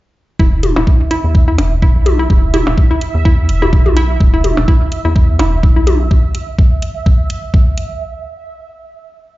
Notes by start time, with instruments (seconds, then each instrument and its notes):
0.39 analog synth bass E1, synth arpeggio sound E4, synth texture E5, kick
0.63 closed hi-hat, high tom
0.76 analog synth bass E1, synth arpeggio sound E4, percussion blips
0.87 kick
1.11 synth arpeggio sound E4, closed hi-hat
1.24 analog synth bass E2
1.35 kick
1.48 synth arpeggio sound E4
1.58 analog synth bass E1, closed hi-hat, percussion blips
1.82 synth arpeggio sound E4, kick
1.95 analog synth bass B1
2.06 closed hi-hat, high tom
2.19 synth arpeggio sound E4
2.30 analog synth bass E1, kick
2.54 synth arpeggio sound E4, closed hi-hat, high tom
2.67 analog synth bass E1, percussion blips
2.78 kick
2.91 synth arpeggio sound E4
3.01 closed hi-hat
3.15 analog synth bass E2
3.25 synth arpeggio sound E4, kick
3.49 analog synth bass E1, closed hi-hat
3.62 synth arpeggio sound E4, high tom
3.73 kick
3.86 analog synth bass B1, high tom
3.97 synth arpeggio sound E4, closed hi-hat
4.20 analog synth bass E1, kick
4.34 synth arpeggio sound E4
4.44 closed hi-hat, high tom
4.57 analog synth bass E1, percussion blips
4.68 synth arpeggio sound E4, kick
4.92 closed hi-hat
5.05 analog synth bass E2, synth arpeggio sound E4
5.16 kick
5.39 analog synth bass E1, synth arpeggio sound E4, closed hi-hat, percussion blips
5.63 kick
5.76 analog synth bass B1, synth arpeggio sound E4
5.87 closed hi-hat, high tom
6.11 kick
6.35 closed hi-hat
6.59 kick
6.82 closed hi-hat
7.06 kick
7.30 closed hi-hat
7.54 kick
7.78 closed hi-hat